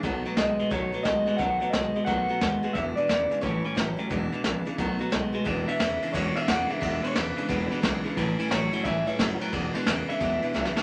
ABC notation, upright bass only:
X:1
M:4/4
L:1/8
Q:"Swing" 1/4=177
K:Emix
V:1 name="Upright bass" clef=bass
B,,, z B,,, z B,,, z B,,, z | B,,, z B,,, z B,,, z ^D,, z | E,,, z E,,, z A,,, z A,,, z | E,,, z ^A,,, z B,,, z B,,, z |
E,,, z E,,, z E,,, z E,,, z | E,,, z E,,, z E,,, z B,,, z | A,,, z A,,, z A,,, z F,,, z | E,,, z E,,, z E,,, z B,,, z |]